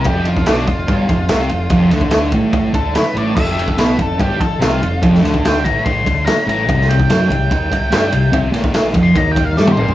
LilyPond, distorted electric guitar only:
\new Staff \with { instrumentName = "Distorted electric guitar" } { \clef bass \time 4/4 \key f \lydian \tempo 4 = 145 f,4 b,8 f,8 g,8 f,8 c8 f,8 | f,8 d4 a,4 d8 r8 a,8 | f,4 b,8 f,8 g,8 f,8 c8 f,8 | f,8 d4 a,4 d8 r8 a,8 |
c4 fis8 c8 ees8 c8 g8 c8 | c8 bes,4 f8 ees4 g8 bes,8 | }